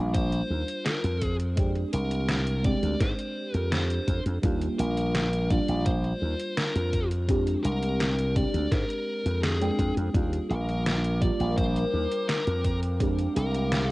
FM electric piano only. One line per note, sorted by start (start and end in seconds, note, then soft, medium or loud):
0.00 1.24 G3 medium
0.00 1.24 A#3 medium
0.00 1.24 D4 medium
0.00 1.24 F4 medium
1.56 2.60 G#3 medium
1.56 2.60 C4 medium
1.56 2.61 D4 medium
1.56 2.61 G4 medium
2.63 4.38 G#3 medium
2.63 4.39 C4 medium
2.63 4.39 D4 medium
2.63 4.40 G4 medium
4.42 5.45 G3 medium
4.42 5.46 A#3 medium
4.42 5.46 D4 medium
4.42 5.47 F4 medium
5.49 6.90 G3 medium
5.49 6.91 A#3 medium
5.49 6.91 D4 medium
5.49 6.92 F4 medium
7.28 8.31 G#3 medium
7.28 8.32 C4 medium
7.28 8.32 D4 medium
7.28 8.33 G4 medium
8.34 9.57 G#3 medium
8.34 9.57 C4 medium
8.34 9.58 D4 medium
8.34 9.58 G4 medium
9.61 10.10 G#3 medium
9.61 10.10 C4 medium
9.61 10.10 D4 medium
9.61 10.11 G5 medium
10.13 11.17 G3 medium
10.13 11.17 A#3 medium
10.13 11.18 D4 medium
10.13 11.18 F4 medium
11.20 12.62 G3 medium
11.20 12.62 A#3 medium
11.20 12.63 D4 medium
11.20 12.63 F4 medium
12.99 13.91 G#3 medium
12.99 13.91 C4 medium
12.99 13.91 D4 medium
12.99 13.91 G4 medium